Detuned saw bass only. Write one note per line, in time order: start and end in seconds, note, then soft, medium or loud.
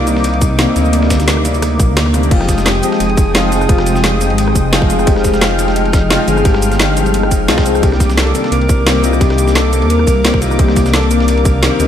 0.00 0.67 C2 medium
0.76 1.81 D2 loud
1.80 1.90 A#1 loud
1.89 2.30 D2 medium
2.31 2.82 F1 loud
3.00 3.68 F1 medium
3.69 4.32 F1 loud
4.30 4.54 G#1 medium
4.55 6.18 F1 medium
6.28 7.33 G1 loud
7.31 7.50 F1 loud
7.48 7.82 C2 medium
7.83 8.33 C2 loud
8.52 9.20 C2 medium
9.21 9.84 C2 loud
9.82 10.06 D#2 medium
10.07 11.70 C2 medium
11.80 11.88 D2 loud